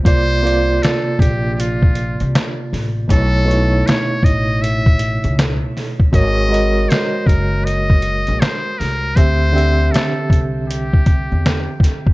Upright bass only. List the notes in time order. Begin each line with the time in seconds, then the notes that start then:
0.06 C2
1.20 A#1
2.21 C2
2.73 A1
3.10 B1
4.24 A1
5.24 C#2
6.13 G#1
7.27 F#1
8.28 A#1
8.80 C2
9.17 D2
10.31 C2
11.32 E2